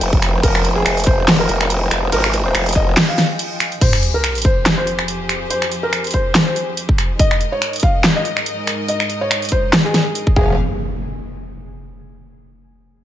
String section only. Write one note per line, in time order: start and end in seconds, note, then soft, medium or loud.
0.00 3.77 F3 medium
0.00 3.77 F4 medium
0.00 3.77 G#4 medium
0.00 0.42 C5 medium
0.00 3.77 G5 medium
0.43 3.80 D#5 medium
3.81 7.16 F2 medium
3.81 7.16 F3 medium
3.81 7.16 G4 medium
3.81 7.16 G#4 medium
3.81 7.16 C5 medium
7.19 10.33 G#2 medium
7.19 10.33 G#3 medium
7.19 10.33 D#4 medium
7.19 10.33 A#4 medium
7.19 10.33 D#5 medium
10.36 10.56 F3 medium
10.36 10.56 C4 medium
10.36 10.56 G4 medium
10.36 10.56 G#4 medium
10.36 10.56 F5 medium